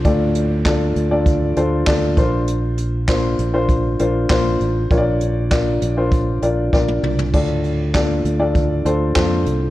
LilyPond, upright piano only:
<<
  \new Staff \with { instrumentName = "Upright piano" } { \time 4/4 \key d \minor \tempo 4 = 99 <d' f' a' d''>8. r16 <d' f' a' d''>8 r16 <d' f' a' d''>8 r16 <d' f' a' c''>16 r16 <d' f' a' d''>8 <d' f' bes' c''>8~ | <d' f' bes' c''>8. r16 <d' f' bes' c''>8 r16 <d' f' bes' c''>8 r16 <d' f' bes' c''>16 r16 <d' f' bes' c''>8. r16 | <d' f' bes' cis'' d''>8. r16 <d' f' bes' d''>8 r16 <d' f' bes' c''>8 r16 <d' f' bes' d''>16 r16 <d' f' bes' d''>8. r16 | <d' f' a' d''>8. r16 <d' f' a' d''>8 r16 <d' f' a' d''>8 r16 <d' f' a' c''>16 r16 <d' f' a' c''>8. r16 | }
  \new Staff \with { instrumentName = "Upright piano" } { \clef bass \time 4/4 \key d \minor a,4. r2 r8 | r1 | r1 | a,4. r2 r8 | }
>>